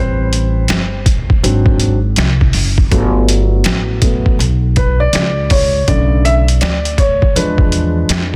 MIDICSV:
0, 0, Header, 1, 4, 480
1, 0, Start_track
1, 0, Tempo, 740741
1, 1890, Time_signature, 4, 2, 24, 8
1, 5416, End_track
2, 0, Start_track
2, 0, Title_t, "Grand piano"
2, 0, Program_c, 0, 0
2, 0, Note_on_c, 0, 55, 49
2, 0, Note_on_c, 0, 60, 56
2, 0, Note_on_c, 0, 71, 46
2, 0, Note_on_c, 0, 72, 74
2, 664, Note_off_c, 0, 55, 0
2, 667, Note_off_c, 0, 71, 0
2, 668, Note_off_c, 0, 60, 0
2, 927, Note_on_c, 0, 54, 50
2, 930, Note_on_c, 0, 60, 48
2, 934, Note_on_c, 0, 62, 52
2, 1153, Note_off_c, 0, 72, 0
2, 1270, Note_off_c, 0, 54, 0
2, 1272, Note_off_c, 0, 60, 0
2, 1274, Note_off_c, 0, 62, 0
2, 1885, Note_on_c, 0, 54, 51
2, 1891, Note_on_c, 0, 57, 41
2, 1894, Note_on_c, 0, 59, 50
2, 2592, Note_off_c, 0, 54, 0
2, 2597, Note_off_c, 0, 57, 0
2, 2600, Note_off_c, 0, 59, 0
2, 2602, Note_on_c, 0, 54, 43
2, 2606, Note_on_c, 0, 57, 40
2, 2609, Note_on_c, 0, 59, 54
2, 2821, Note_off_c, 0, 54, 0
2, 2824, Note_off_c, 0, 57, 0
2, 2826, Note_off_c, 0, 59, 0
2, 3092, Note_on_c, 0, 71, 74
2, 3230, Note_off_c, 0, 71, 0
2, 3241, Note_on_c, 0, 74, 91
2, 3569, Note_on_c, 0, 73, 90
2, 3580, Note_off_c, 0, 74, 0
2, 3793, Note_off_c, 0, 73, 0
2, 3806, Note_on_c, 0, 50, 52
2, 3811, Note_on_c, 0, 57, 41
2, 3812, Note_on_c, 0, 74, 83
2, 3814, Note_on_c, 0, 49, 59
2, 4049, Note_on_c, 0, 76, 113
2, 4058, Note_off_c, 0, 74, 0
2, 4103, Note_off_c, 0, 76, 0
2, 4150, Note_off_c, 0, 50, 0
2, 4152, Note_off_c, 0, 57, 0
2, 4154, Note_off_c, 0, 49, 0
2, 4286, Note_on_c, 0, 74, 79
2, 4528, Note_on_c, 0, 73, 91
2, 4535, Note_off_c, 0, 74, 0
2, 4768, Note_on_c, 0, 53, 50
2, 4770, Note_on_c, 0, 56, 50
2, 4770, Note_on_c, 0, 71, 73
2, 4773, Note_on_c, 0, 62, 57
2, 4776, Note_off_c, 0, 73, 0
2, 5416, Note_off_c, 0, 53, 0
2, 5416, Note_off_c, 0, 56, 0
2, 5416, Note_off_c, 0, 62, 0
2, 5416, Note_off_c, 0, 71, 0
2, 5416, End_track
3, 0, Start_track
3, 0, Title_t, "Upright bass"
3, 0, Program_c, 1, 32
3, 0, Note_on_c, 1, 33, 98
3, 425, Note_off_c, 1, 33, 0
3, 447, Note_on_c, 1, 31, 73
3, 904, Note_off_c, 1, 31, 0
3, 929, Note_on_c, 1, 32, 89
3, 1386, Note_off_c, 1, 32, 0
3, 1408, Note_on_c, 1, 36, 84
3, 1637, Note_off_c, 1, 36, 0
3, 1647, Note_on_c, 1, 30, 88
3, 1877, Note_off_c, 1, 30, 0
3, 1889, Note_on_c, 1, 31, 99
3, 2345, Note_off_c, 1, 31, 0
3, 2366, Note_on_c, 1, 33, 80
3, 2824, Note_off_c, 1, 33, 0
3, 2845, Note_on_c, 1, 35, 92
3, 3303, Note_off_c, 1, 35, 0
3, 3324, Note_on_c, 1, 37, 90
3, 3783, Note_off_c, 1, 37, 0
3, 3808, Note_on_c, 1, 35, 88
3, 4265, Note_off_c, 1, 35, 0
3, 4287, Note_on_c, 1, 38, 80
3, 4744, Note_off_c, 1, 38, 0
3, 4767, Note_on_c, 1, 40, 94
3, 5225, Note_off_c, 1, 40, 0
3, 5246, Note_on_c, 1, 41, 85
3, 5416, Note_off_c, 1, 41, 0
3, 5416, End_track
4, 0, Start_track
4, 0, Title_t, "Drums"
4, 212, Note_on_c, 9, 42, 65
4, 277, Note_off_c, 9, 42, 0
4, 442, Note_on_c, 9, 42, 69
4, 454, Note_on_c, 9, 38, 102
4, 507, Note_off_c, 9, 42, 0
4, 519, Note_off_c, 9, 38, 0
4, 686, Note_on_c, 9, 36, 94
4, 688, Note_on_c, 9, 42, 77
4, 751, Note_off_c, 9, 36, 0
4, 752, Note_off_c, 9, 42, 0
4, 842, Note_on_c, 9, 36, 93
4, 906, Note_off_c, 9, 36, 0
4, 933, Note_on_c, 9, 42, 79
4, 998, Note_off_c, 9, 42, 0
4, 1074, Note_on_c, 9, 36, 94
4, 1138, Note_off_c, 9, 36, 0
4, 1164, Note_on_c, 9, 42, 53
4, 1228, Note_off_c, 9, 42, 0
4, 1402, Note_on_c, 9, 42, 72
4, 1415, Note_on_c, 9, 38, 109
4, 1466, Note_off_c, 9, 42, 0
4, 1480, Note_off_c, 9, 38, 0
4, 1563, Note_on_c, 9, 36, 81
4, 1628, Note_off_c, 9, 36, 0
4, 1641, Note_on_c, 9, 46, 51
4, 1705, Note_off_c, 9, 46, 0
4, 1800, Note_on_c, 9, 36, 81
4, 1865, Note_off_c, 9, 36, 0
4, 1889, Note_on_c, 9, 42, 67
4, 1890, Note_on_c, 9, 36, 82
4, 1954, Note_off_c, 9, 36, 0
4, 1954, Note_off_c, 9, 42, 0
4, 2129, Note_on_c, 9, 42, 68
4, 2194, Note_off_c, 9, 42, 0
4, 2359, Note_on_c, 9, 42, 74
4, 2371, Note_on_c, 9, 38, 106
4, 2424, Note_off_c, 9, 42, 0
4, 2436, Note_off_c, 9, 38, 0
4, 2603, Note_on_c, 9, 36, 88
4, 2603, Note_on_c, 9, 42, 75
4, 2668, Note_off_c, 9, 36, 0
4, 2668, Note_off_c, 9, 42, 0
4, 2760, Note_on_c, 9, 36, 86
4, 2825, Note_off_c, 9, 36, 0
4, 2854, Note_on_c, 9, 42, 70
4, 2919, Note_off_c, 9, 42, 0
4, 3085, Note_on_c, 9, 42, 49
4, 3089, Note_on_c, 9, 36, 85
4, 3149, Note_off_c, 9, 42, 0
4, 3153, Note_off_c, 9, 36, 0
4, 3324, Note_on_c, 9, 42, 77
4, 3338, Note_on_c, 9, 38, 88
4, 3389, Note_off_c, 9, 42, 0
4, 3403, Note_off_c, 9, 38, 0
4, 3564, Note_on_c, 9, 46, 46
4, 3569, Note_on_c, 9, 36, 79
4, 3629, Note_off_c, 9, 46, 0
4, 3634, Note_off_c, 9, 36, 0
4, 3809, Note_on_c, 9, 36, 91
4, 3809, Note_on_c, 9, 42, 75
4, 3874, Note_off_c, 9, 36, 0
4, 3874, Note_off_c, 9, 42, 0
4, 4052, Note_on_c, 9, 42, 59
4, 4117, Note_off_c, 9, 42, 0
4, 4202, Note_on_c, 9, 42, 58
4, 4266, Note_off_c, 9, 42, 0
4, 4283, Note_on_c, 9, 42, 69
4, 4295, Note_on_c, 9, 38, 108
4, 4348, Note_off_c, 9, 42, 0
4, 4360, Note_off_c, 9, 38, 0
4, 4441, Note_on_c, 9, 42, 58
4, 4506, Note_off_c, 9, 42, 0
4, 4523, Note_on_c, 9, 36, 82
4, 4524, Note_on_c, 9, 42, 73
4, 4588, Note_off_c, 9, 36, 0
4, 4589, Note_off_c, 9, 42, 0
4, 4679, Note_on_c, 9, 36, 88
4, 4744, Note_off_c, 9, 36, 0
4, 4771, Note_on_c, 9, 42, 79
4, 4836, Note_off_c, 9, 42, 0
4, 4913, Note_on_c, 9, 36, 100
4, 4977, Note_off_c, 9, 36, 0
4, 5003, Note_on_c, 9, 42, 60
4, 5068, Note_off_c, 9, 42, 0
4, 5243, Note_on_c, 9, 42, 81
4, 5257, Note_on_c, 9, 38, 104
4, 5308, Note_off_c, 9, 42, 0
4, 5322, Note_off_c, 9, 38, 0
4, 5416, End_track
0, 0, End_of_file